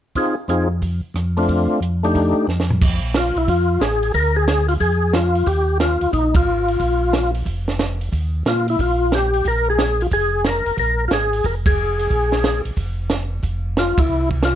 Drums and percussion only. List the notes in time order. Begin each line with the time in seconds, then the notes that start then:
0.15 kick, open hi-hat
0.49 closed hi-hat
0.82 kick, open hi-hat
1.16 cross-stick, closed hi-hat
1.37 open hi-hat
1.48 kick, open hi-hat
1.82 closed hi-hat
2.04 open hi-hat
2.15 kick, open hi-hat
2.49 snare
2.60 snare
2.70 floor tom
2.82 kick, crash
3.14 snare, closed hi-hat
3.37 open hi-hat
3.48 kick, open hi-hat
3.81 snare, closed hi-hat
4.03 open hi-hat
4.14 kick, open hi-hat
4.48 snare, closed hi-hat
4.69 open hi-hat
4.80 kick, open hi-hat
5.13 snare, closed hi-hat
5.35 open hi-hat
5.47 kick, open hi-hat
5.80 snare, closed hi-hat
6.01 open hi-hat
6.13 kick, open hi-hat
6.35 kick, ride
6.68 open hi-hat
6.80 kick, open hi-hat
7.13 snare, closed hi-hat
7.35 open hi-hat
7.46 kick, open hi-hat
7.68 snare
7.79 snare, closed hi-hat
8.01 open hi-hat
8.13 kick, open hi-hat
8.46 snare, closed hi-hat
8.68 open hi-hat
8.79 kick, open hi-hat
9.12 snare, closed hi-hat
9.34 open hi-hat
9.45 kick, open hi-hat
9.79 snare, closed hi-hat
10.01 open hi-hat
10.12 kick, open hi-hat
10.45 snare, closed hi-hat
10.66 open hi-hat
10.78 kick, open hi-hat
11.11 snare, closed hi-hat
11.33 open hi-hat
11.44 kick, open hi-hat
11.66 kick, ride
11.99 open hi-hat
12.11 kick, open hi-hat
12.32 snare
12.44 snare, closed hi-hat
12.65 open hi-hat
12.77 kick, open hi-hat
13.10 snare, closed hi-hat
13.43 kick, open hi-hat
13.77 snare, closed hi-hat
13.98 kick, ride
14.31 kick
14.43 snare, closed hi-hat